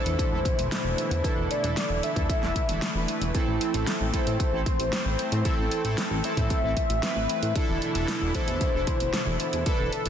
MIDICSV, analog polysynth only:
0, 0, Header, 1, 2, 480
1, 0, Start_track
1, 0, Key_signature, 0, "minor"
1, 0, Tempo, 526316
1, 1133, Time_signature, 4, 2, 24, 8
1, 9203, End_track
2, 0, Start_track
2, 0, Title_t, "Analog polysynth"
2, 0, Program_c, 0, 90
2, 0, Note_on_c, 0, 62, 92
2, 0, Note_on_c, 0, 64, 83
2, 0, Note_on_c, 0, 69, 103
2, 264, Note_off_c, 0, 62, 0
2, 264, Note_off_c, 0, 64, 0
2, 264, Note_off_c, 0, 69, 0
2, 293, Note_on_c, 0, 62, 82
2, 294, Note_on_c, 0, 64, 75
2, 294, Note_on_c, 0, 69, 91
2, 362, Note_off_c, 0, 62, 0
2, 362, Note_off_c, 0, 64, 0
2, 362, Note_off_c, 0, 69, 0
2, 653, Note_on_c, 0, 69, 82
2, 654, Note_on_c, 0, 62, 75
2, 654, Note_on_c, 0, 64, 68
2, 1104, Note_off_c, 0, 62, 0
2, 1104, Note_off_c, 0, 64, 0
2, 1104, Note_off_c, 0, 69, 0
2, 1135, Note_on_c, 0, 64, 87
2, 1136, Note_on_c, 0, 62, 96
2, 1136, Note_on_c, 0, 69, 108
2, 1465, Note_off_c, 0, 62, 0
2, 1465, Note_off_c, 0, 64, 0
2, 1465, Note_off_c, 0, 69, 0
2, 1494, Note_on_c, 0, 62, 101
2, 1494, Note_on_c, 0, 69, 116
2, 1495, Note_on_c, 0, 64, 93
2, 1824, Note_off_c, 0, 62, 0
2, 1824, Note_off_c, 0, 69, 0
2, 1825, Note_off_c, 0, 64, 0
2, 1853, Note_on_c, 0, 62, 94
2, 1854, Note_on_c, 0, 64, 81
2, 1854, Note_on_c, 0, 69, 98
2, 2184, Note_off_c, 0, 62, 0
2, 2184, Note_off_c, 0, 64, 0
2, 2184, Note_off_c, 0, 69, 0
2, 2214, Note_on_c, 0, 62, 85
2, 2214, Note_on_c, 0, 64, 75
2, 2214, Note_on_c, 0, 69, 91
2, 2282, Note_off_c, 0, 62, 0
2, 2282, Note_off_c, 0, 64, 0
2, 2282, Note_off_c, 0, 69, 0
2, 2453, Note_on_c, 0, 62, 86
2, 2453, Note_on_c, 0, 64, 79
2, 2453, Note_on_c, 0, 69, 93
2, 2563, Note_off_c, 0, 62, 0
2, 2563, Note_off_c, 0, 64, 0
2, 2563, Note_off_c, 0, 69, 0
2, 2692, Note_on_c, 0, 62, 73
2, 2693, Note_on_c, 0, 64, 71
2, 2693, Note_on_c, 0, 71, 85
2, 3023, Note_off_c, 0, 62, 0
2, 3024, Note_off_c, 0, 64, 0
2, 3024, Note_off_c, 0, 71, 0
2, 3053, Note_on_c, 0, 60, 96
2, 3053, Note_on_c, 0, 64, 92
2, 3053, Note_on_c, 0, 69, 108
2, 3384, Note_off_c, 0, 60, 0
2, 3384, Note_off_c, 0, 64, 0
2, 3384, Note_off_c, 0, 69, 0
2, 3412, Note_on_c, 0, 60, 100
2, 3412, Note_on_c, 0, 64, 89
2, 3412, Note_on_c, 0, 69, 112
2, 3743, Note_off_c, 0, 60, 0
2, 3743, Note_off_c, 0, 64, 0
2, 3743, Note_off_c, 0, 69, 0
2, 3772, Note_on_c, 0, 64, 78
2, 3772, Note_on_c, 0, 69, 98
2, 3773, Note_on_c, 0, 60, 91
2, 4103, Note_off_c, 0, 64, 0
2, 4103, Note_off_c, 0, 69, 0
2, 4104, Note_off_c, 0, 60, 0
2, 4132, Note_on_c, 0, 60, 81
2, 4132, Note_on_c, 0, 64, 79
2, 4132, Note_on_c, 0, 69, 92
2, 4201, Note_off_c, 0, 60, 0
2, 4201, Note_off_c, 0, 64, 0
2, 4201, Note_off_c, 0, 69, 0
2, 4491, Note_on_c, 0, 60, 75
2, 4491, Note_on_c, 0, 72, 88
2, 4492, Note_on_c, 0, 64, 67
2, 4943, Note_off_c, 0, 60, 0
2, 4943, Note_off_c, 0, 64, 0
2, 4943, Note_off_c, 0, 72, 0
2, 4969, Note_on_c, 0, 60, 98
2, 4970, Note_on_c, 0, 64, 90
2, 4970, Note_on_c, 0, 69, 107
2, 5302, Note_off_c, 0, 60, 0
2, 5302, Note_off_c, 0, 64, 0
2, 5302, Note_off_c, 0, 69, 0
2, 5330, Note_on_c, 0, 69, 116
2, 5331, Note_on_c, 0, 60, 100
2, 5331, Note_on_c, 0, 64, 93
2, 5662, Note_off_c, 0, 69, 0
2, 5663, Note_off_c, 0, 60, 0
2, 5663, Note_off_c, 0, 64, 0
2, 5691, Note_on_c, 0, 60, 94
2, 5691, Note_on_c, 0, 69, 100
2, 5692, Note_on_c, 0, 64, 85
2, 6023, Note_off_c, 0, 60, 0
2, 6023, Note_off_c, 0, 64, 0
2, 6023, Note_off_c, 0, 69, 0
2, 6052, Note_on_c, 0, 60, 81
2, 6052, Note_on_c, 0, 69, 87
2, 6053, Note_on_c, 0, 64, 76
2, 6121, Note_off_c, 0, 69, 0
2, 6122, Note_off_c, 0, 60, 0
2, 6122, Note_off_c, 0, 64, 0
2, 6412, Note_on_c, 0, 60, 78
2, 6412, Note_on_c, 0, 64, 71
2, 6412, Note_on_c, 0, 71, 88
2, 6863, Note_off_c, 0, 60, 0
2, 6863, Note_off_c, 0, 64, 0
2, 6863, Note_off_c, 0, 71, 0
2, 6892, Note_on_c, 0, 62, 97
2, 6892, Note_on_c, 0, 64, 92
2, 6892, Note_on_c, 0, 69, 110
2, 7223, Note_off_c, 0, 62, 0
2, 7223, Note_off_c, 0, 64, 0
2, 7223, Note_off_c, 0, 69, 0
2, 7249, Note_on_c, 0, 64, 92
2, 7249, Note_on_c, 0, 69, 110
2, 7250, Note_on_c, 0, 62, 99
2, 7582, Note_off_c, 0, 62, 0
2, 7582, Note_off_c, 0, 64, 0
2, 7582, Note_off_c, 0, 69, 0
2, 7611, Note_on_c, 0, 62, 93
2, 7611, Note_on_c, 0, 64, 84
2, 7611, Note_on_c, 0, 69, 102
2, 7943, Note_off_c, 0, 62, 0
2, 7943, Note_off_c, 0, 64, 0
2, 7943, Note_off_c, 0, 69, 0
2, 7971, Note_on_c, 0, 64, 77
2, 7972, Note_on_c, 0, 62, 83
2, 7972, Note_on_c, 0, 69, 88
2, 8041, Note_off_c, 0, 62, 0
2, 8041, Note_off_c, 0, 64, 0
2, 8041, Note_off_c, 0, 69, 0
2, 8332, Note_on_c, 0, 62, 73
2, 8332, Note_on_c, 0, 64, 69
2, 8333, Note_on_c, 0, 69, 85
2, 8783, Note_off_c, 0, 62, 0
2, 8783, Note_off_c, 0, 64, 0
2, 8784, Note_off_c, 0, 69, 0
2, 8810, Note_on_c, 0, 62, 98
2, 8811, Note_on_c, 0, 64, 90
2, 8811, Note_on_c, 0, 69, 114
2, 9143, Note_off_c, 0, 62, 0
2, 9143, Note_off_c, 0, 64, 0
2, 9143, Note_off_c, 0, 69, 0
2, 9170, Note_on_c, 0, 62, 96
2, 9170, Note_on_c, 0, 69, 115
2, 9171, Note_on_c, 0, 64, 94
2, 9203, Note_off_c, 0, 62, 0
2, 9203, Note_off_c, 0, 64, 0
2, 9203, Note_off_c, 0, 69, 0
2, 9203, End_track
0, 0, End_of_file